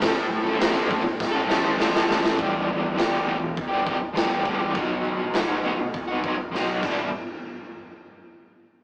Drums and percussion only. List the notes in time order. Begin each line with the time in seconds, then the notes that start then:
0.01 kick, snare, open hi-hat
0.61 snare, open hi-hat
0.91 kick
1.20 kick, snare
1.50 snare
1.80 snare
1.95 snare
2.11 snare
2.25 snare
2.39 kick, floor tom
2.69 floor tom
2.98 snare, floor tom
3.28 floor tom
3.57 kick, floor tom
3.87 kick, floor tom
4.16 snare, floor tom
4.45 kick, floor tom
4.75 kick, floor tom
5.05 floor tom
5.34 snare, floor tom
5.66 floor tom
5.94 kick, floor tom
6.24 kick, floor tom
6.55 snare
6.83 kick, crash